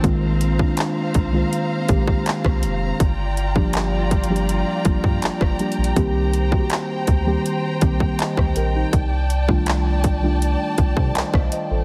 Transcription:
Already playing: string section C4
0.03 analog synth bass A#1, synth keys D#3 G#3 A#3 C4 F4, string section C5 F5 A#5, kick, closed hi-hat
0.41 closed hi-hat
0.59 synth keys D#3 G#3 A#3 C4 D4, kick
0.77 clap, closed hi-hat
1.14 analog synth bass C2, kick, closed hi-hat
1.32 synth keys D#3 G#3 A#3 C4 F4
1.53 closed hi-hat
1.88 analog synth bass A#1, synth keys D#3 G#3 A#3 C4 G4, kick, closed hi-hat
2.08 kick
2.26 clap, closed hi-hat
2.45 analog synth bass C2, kick, cross-stick
2.63 analog synth bass F1, closed hi-hat
3.00 analog synth bass G1, string section F4 D5 G5, kick, closed hi-hat
3.37 closed hi-hat
3.55 synth keys F3 G3 A#3 D4 G4, kick
3.73 clap, closed hi-hat
4.11 kick, closed hi-hat
4.24 closed hi-hat
4.29 synth keys F3 G3 A#3 D4 G4
4.36 closed hi-hat
4.49 closed hi-hat
4.85 analog synth bass G1, synth keys F3 G3 A#3 D4 F4, kick, closed hi-hat
5.04 analog synth bass G2, kick
5.22 analog synth bass G1, clap, closed hi-hat
5.41 analog synth bass G1, kick, cross-stick
5.59 synth keys F3 G3 A#3 D4 G4, closed hi-hat, open hi-hat
5.72 closed hi-hat
5.78 analog synth bass A#1
5.84 closed hi-hat
5.96 analog synth bass C2, synth keys D#3 G3 A#3 C4 G4, string section C5, kick, closed hi-hat
6.33 closed hi-hat
6.51 synth keys D#3 G3 A#3 C4 F#4, kick
6.60 synth keys G4
6.70 clap, closed hi-hat
7.07 analog synth bass D2, kick, closed hi-hat
7.26 synth keys D#3 G3 A#3 C4 G4
7.46 closed hi-hat
7.81 analog synth bass C2, synth keys D#3 G3 A#3 C4 G4, kick, closed hi-hat
8.00 kick
8.19 synth keys C5 D#5, clap, closed hi-hat
8.37 analog synth bass D2, synth keys C5, kick, cross-stick
8.56 analog synth bass A#1, synth keys G4 A#4, closed hi-hat
8.75 synth keys D#4 G4
8.93 analog synth bass C2, string section D5 A5, kick, closed hi-hat
9.30 closed hi-hat
9.48 synth keys D#3 G3 A3 D4 F4, kick
9.66 clap, closed hi-hat
10.04 kick, closed hi-hat
10.22 synth keys D#3 G3 A3 D4 F4
10.42 closed hi-hat
10.78 analog synth bass C2, kick, closed hi-hat
10.97 analog synth bass C3, synth keys A4 C5, kick
11.15 analog synth bass C2, synth keys C5 D#5, clap, closed hi-hat
11.34 analog synth bass C2, synth keys D5 F5, kick, cross-stick
11.52 synth keys C5 D#5, closed hi-hat
11.71 analog synth bass A1, synth keys A4 C5

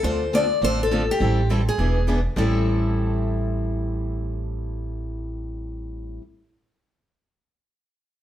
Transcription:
0.03 upright bass D2, steel-string acoustic guitar D3 F3 A3 C4 D4 F4 A4 C5
0.33 steel-string acoustic guitar D3 F3 A3 C4 D4 F4 A4 D5
0.61 upright bass A1, steel-string acoustic guitar D3 F3 A3 C4 D4 F4 A4 C5
0.83 steel-string acoustic guitar A4
0.91 steel-string acoustic guitar D3 F3 A3 C4 D4 F4 A4
1.11 steel-string acoustic guitar G4
1.20 upright bass A1, steel-string acoustic guitar E3 G3 C4 E4 A4
1.49 steel-string acoustic guitar E3 G3 C4 E4 A4
1.69 steel-string acoustic guitar G#4
1.78 upright bass E1, steel-string acoustic guitar E3 B3 D4 G#4 B4
2.07 steel-string acoustic guitar E3 B3 D4 G#4 B4
2.36 upright bass A1, steel-string acoustic guitar A2 E3 G3 C4 E4 A4

